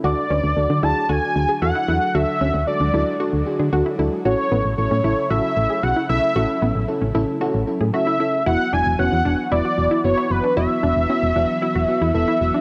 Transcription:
Already playing: A3
0.04 D2 D3 F#3 D4 F#4 A4 D5
0.30 D2 C#4 D4 F#4 B4
0.44 D2
0.57 D2 D4 F#4 A4
0.70 D3 D4
0.83 D2 D4 E4 F#4 G#4 A5
1.09 D2 D4 F#4 A4 G#5
1.36 D2 D4 F#4 G#4
1.49 G#4
1.62 E2 D4 F#4 A4 F#5
1.75 E4
1.88 E2 D4 E4 F#4 A4
2.15 D2 G#3 D4 F#4 A4 E5
2.41 D2 C#4 D4 F#4 A4
2.54 D2
2.67 D4 F#4 A4 D5
2.80 D2 D4
2.94 D2 D4 E4 F#4 A4
3.20 D4 F#4 A4
3.33 D2
3.46 D4 F#4 G#4
3.59 D3 G#4
3.73 D2 D4 F#4 A4
3.86 E4
3.99 D2 D4 E4 F#4 A4
4.25 A1 C#3 A3 C#4 E4 F#4 A4 C#5
4.52 A1 B3 C#4 E4 A4
4.65 A1
4.78 A1 C#4 E4 A4 C#5
4.91 A2 C#4
5.04 A1 C#4 E4 A4
5.30 A1 C#4 E4 F#4 A4 E5
5.57 A1 C#4 E4 A4
5.70 G#4
5.83 B1 C#4 E4 F#4 G#4 F#5
5.96 E4
6.09 B1 C#4 E4 A4 E5
6.36 A1 C#4 E4 F#4 A4
6.62 A1 B3 C#4 E4 A4
6.75 A1
6.88 C#4 E4 A4
7.02 A1 C#4
7.15 A1 C#4 E4 A4
7.41 C#4 E4 F#4 A4
7.54 A1
7.67 C#4 E4 A4
7.81 A2 G#4
7.93 C#4 E4 F#4 A4 E5
8.07 E4
8.20 C#4 E4 A4
8.46 E1 E3 F#3 B3 E4 F#4 F#5
8.73 E1 B3 D4 E4 F#4 G#5
8.86 E1
8.99 E1 B3 C#4 E4 F#4 F#5
9.12 E2
9.25 E1 B3 D4 E4 F#4
9.51 E1 B3 E4 F#4 D5
9.65 F#4
9.78 E1 B3 E4 F#4
9.91 E4
10.04 F#1 B3 E4 F#4 C#5
10.18 E4
10.30 F#1 B3 E4 F#4 B4
10.44 D4
10.57 E1 B3 E4 F#4 E5
10.83 E1 B3 D4 E4 F#4
10.96 E1
11.09 B3 C#4 E4 F#4
11.23 E1
11.36 E1 B3 D4 E4 F#4
11.62 B3 E4 F#4
11.75 E1 F#4
11.88 B3 E4 F#4
12.02 E2 E4
12.14 E1 B3 E4 A4 E5
12.28 E4
12.41 E1 B3 E4 F#4
12.54 D4

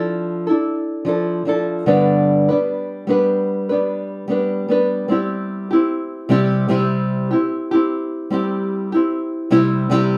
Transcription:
Already playing: F3 D4 E4 A4
0.47 D4 E4 A4
1.05 F3 D4 E4 A4
1.45 F3 D4 E4 A4
1.86 G2 D3 G3 B3 D4 B4
2.49 G3 B3 D4 B4
3.07 G3 B3 D4 B4
3.69 G3 B3 D4 B4
4.28 G3 B3 D4 B4
4.68 G3 B3 D4 B4
5.08 G3 C4 E4 G4
5.71 C4 E4 G4
6.29 C3 G3 C4 E4 G4
6.68 C3 G3 C4 E4 G4
7.31 C4 E4 G4
7.71 C4 E4 G4
8.30 G3 C4 E4 G4
8.92 C4 E4 G4
9.50 C3 G3 C4 E4 G4
9.90 C3 G3 C4 E4 G4

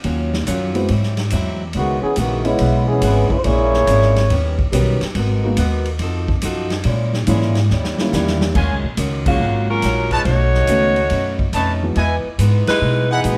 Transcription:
0.03 D#2 D#3 F#3 C#4 F4, ride
0.33 snare
0.46 F#2 D#3 F#3 C#4 F4, hi-hat pedal, ride
0.74 G#3 B3 C4 E4 F#4, ride
0.88 G#2 F#3 C4 E4, ride
1.03 snare
1.17 snare, ride
1.30 E2 G#2 F#3 C4 E4, hi-hat pedal, ride
1.73 C#2 C#3 D#3 G#3 B3 E4 F#4, ride
2.01 E3 B3 C#4 G#4, muted upright bass stroke
2.16 A#1 C#3 D#3 G#3 B3 E4 F#4, hi-hat pedal, ride
2.44 G#3 B3 C#4 E4 D#5, ride
2.59 B1 C#3 G#3 B3, ride
2.63 E4
2.87 E3 B3 C#4 G#4
3.01 G#1 C#3 G#3 B3 E4, hi-hat pedal, ride
3.30 G#3 C#4 E4 B4, muted upright bass stroke, kick
3.38 C5
3.44 A#1 A#2 G#3 A#3 C#4 E4 G#4 C#5, ride
3.73 snare
3.87 G#1 A#2 G#3 C#4 E4, hi-hat pedal, ride
4.02 snare
4.16 snare, ride
4.29 D#2 D#3 B3 C#4 G4, ride
4.59 kick
4.72 B1 D#3 G3 B3 C#4 D#4 F#4 G4, hi-hat pedal, ride
5.01 muted upright bass stroke, snare, ride
5.15 G#1 G#3 B3 F#4 A#4, ride
5.44 G#3 A#3 B3 D#4 F#4
5.57 D#2 G#3 B3 F#4 A#4, hi-hat pedal, ride
5.85 ride
5.99 F2 F3 D#4 F#4, ride
6.03 A4
6.28 kick
6.42 F#2 F3 D#4 F#4 A4, hi-hat pedal, ride
6.70 snare, ride
6.83 A#2 G#3 C#4, ride
6.88 E4
7.13 snare
7.27 G#2 A#2 E3 G#3 A#3 C#4 E4, hi-hat pedal, ride
7.41 snare
7.55 snare, ride
7.70 D#2 D#3 G3 C#4 E4, snare
7.84 snare
7.98 D#3 G3 A#3 C#4 E4, snare
8.12 E2 D#3 G3 C#4 E4, snare, hi-hat pedal
8.27 snare
8.41 snare
8.54 D#2 D#3 G#3 C#4 F#4 C#5 F5 G#5, kick, crash
8.71 C#2
8.84 A#1
8.97 C#2 D#3 G#3 C#4 F#4, hi-hat pedal, ride
9.26 C#3 F#3 G#3 A#3 C#4 F4 F#4 F5, kick, crash
9.40 G#1 D#3 G#3 C#4 F#4
9.69 F#3 C#4 F4 A#4
9.82 A#1 D#3 G#3 C#4 F#4, snare, hi-hat pedal, ride
10.10 G#3 C#4 D#4 F4 B4 C#5 A5, kick, ride
10.25 B1 B2 A3 C#4 D#4 F#4 C#5, ride
10.54 snare
10.67 C#2 B2 D#3 A3 B3 C#4 D#4 F#4, hi-hat pedal, ride
10.96 ride
11.10 F#2 B2 A3 C#4 D#4, ride
11.39 kick
11.52 F2 B2 A3 C#4 D#4 B4 C#5 A5, hi-hat pedal, ride
11.83 E3 G#3 B3 D#4 F#4
11.96 E2 E3 G#3 B3 D#4 E4 B4 D#5 G#5, ride
12.25 muted upright bass stroke
12.38 G#2 E3 G#3 B3 D#4, hi-hat pedal, ride
12.67 G#3 D#4 E4 B4, muted upright bass stroke, snare, ride
12.81 B2 E3 G#3 B3 D#4
13.10 E3 B3 D#4 E4 G#4 B4 D#5 F#5
13.24 A#2 E3 G#3 B3 D#4 F#4, hi-hat pedal, ride

